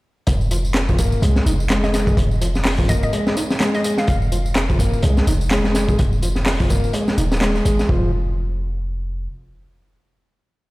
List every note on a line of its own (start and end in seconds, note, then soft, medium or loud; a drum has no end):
0.27 1.18 F1 loud
0.27 kick loud
0.27 closed hi-hat loud
0.27 tambourine soft
0.41 tambourine soft
0.51 0.57 F3 medium
0.51 closed hi-hat medium
0.51 tambourine medium
0.65 tambourine soft
0.74 snare loud
0.74 clap loud
0.74 closed hi-hat medium
0.74 tambourine soft
0.89 0.98 F3 medium
0.89 kick medium
0.89 tambourine soft
0.98 1.22 A#3 medium
0.98 kick loud
0.98 closed hi-hat medium
0.98 tambourine medium
1.12 tambourine soft
1.22 1.41 C2 loud
1.22 1.45 G#3 medium
1.22 closed hi-hat loud
1.22 tambourine soft
1.36 snare medium
1.36 tambourine soft
1.46 2.14 F1 medium
1.46 1.52 D#4 medium
1.46 closed hi-hat medium
1.46 tambourine medium
1.60 tambourine soft
1.70 2.17 G#3 loud
1.70 snare loud
1.70 clap loud
1.70 closed hi-hat medium
1.70 tambourine soft
1.84 1.90 D#5 medium
1.84 snare medium
1.84 tambourine soft
1.94 2.03 D#5 medium
1.94 snare medium
1.94 closed hi-hat medium
1.94 tambourine medium
2.07 kick loud
2.07 tambourine soft
2.17 3.09 F1 loud
2.17 kick loud
2.17 closed hi-hat medium
2.17 tambourine soft
2.31 tambourine soft
2.41 2.47 F3 medium
2.41 closed hi-hat medium
2.41 tambourine medium
2.55 snare soft
2.55 tambourine soft
2.65 snare loud
2.65 clap loud
2.65 open hi-hat medium
2.65 tambourine soft
2.79 2.89 F3 medium
2.79 kick medium
2.79 tambourine soft
2.89 3.12 A#3 medium
2.89 2.98 D#5 medium
2.89 kick loud
2.89 closed hi-hat medium
2.89 tambourine medium
3.03 3.10 D#5 medium
3.03 tambourine soft
3.13 3.36 G#3 medium
3.13 closed hi-hat medium
3.13 tambourine soft
3.27 snare medium
3.27 tambourine soft
3.36 3.43 D#4 medium
3.36 closed hi-hat medium
3.36 tambourine medium
3.50 snare medium
3.50 tambourine soft
3.60 4.07 G#3 loud
3.60 snare loud
3.60 clap loud
3.60 closed hi-hat medium
3.60 tambourine soft
3.74 3.81 D#5 medium
3.74 snare soft
3.74 tambourine soft
3.84 3.93 D#5 medium
3.84 closed hi-hat medium
3.84 tambourine medium
3.98 4.05 F5 medium
3.98 snare soft
3.98 tambourine soft
4.07 4.99 F1 loud
4.07 4.17 F5 medium
4.07 kick loud
4.07 closed hi-hat medium
4.07 tambourine soft
4.22 tambourine soft
4.32 4.38 F3 medium
4.32 closed hi-hat medium
4.32 tambourine medium
4.46 tambourine soft
4.55 snare loud
4.55 clap loud
4.55 closed hi-hat medium
4.55 tambourine soft
4.69 4.79 F3 medium
4.69 kick medium
4.69 tambourine soft
4.79 5.02 A#3 medium
4.79 kick loud
4.79 closed hi-hat medium
4.79 tambourine medium
4.93 tambourine soft
5.03 5.22 C2 loud
5.03 5.26 G#3 medium
5.03 closed hi-hat medium
5.03 tambourine soft
5.17 snare soft
5.17 tambourine soft
5.27 5.95 F1 medium
5.27 5.33 D#4 medium
5.27 closed hi-hat medium
5.27 tambourine medium
5.41 tambourine soft
5.50 5.98 G#3 loud
5.50 snare loud
5.50 clap loud
5.50 closed hi-hat medium
5.50 tambourine soft
5.64 snare medium
5.64 tambourine soft
5.75 snare medium
5.75 closed hi-hat medium
5.75 tambourine medium
5.89 kick loud
5.89 tambourine soft
5.99 6.90 F1 loud
5.99 kick loud
5.99 closed hi-hat medium
5.99 tambourine soft
6.13 tambourine soft
6.22 6.29 F3 medium
6.22 closed hi-hat medium
6.22 tambourine medium
6.36 snare soft
6.36 tambourine soft
6.46 snare loud
6.46 clap loud
6.46 open hi-hat medium
6.46 tambourine soft
6.60 6.70 F3 medium
6.60 kick medium
6.60 tambourine soft
6.69 6.93 A#3 medium
6.69 kick loud
6.69 closed hi-hat medium
6.69 tambourine medium
6.84 tambourine soft
6.93 7.17 G#3 medium
6.93 closed hi-hat medium
6.93 tambourine soft
7.08 snare soft
7.08 tambourine soft
7.18 7.61 D#1 loud
7.18 7.24 D#4 medium
7.18 closed hi-hat medium
7.18 tambourine medium
7.32 snare medium
7.32 tambourine soft
7.41 7.88 G#3 loud
7.41 snare loud
7.41 clap loud
7.41 closed hi-hat medium
7.41 tambourine soft
7.55 snare soft
7.55 tambourine soft
7.65 7.84 G#1 medium
7.65 closed hi-hat medium
7.65 tambourine medium
7.79 snare soft
7.79 tambourine soft
7.89 9.28 F1 loud
7.89 8.11 F3 loud
7.89 kick loud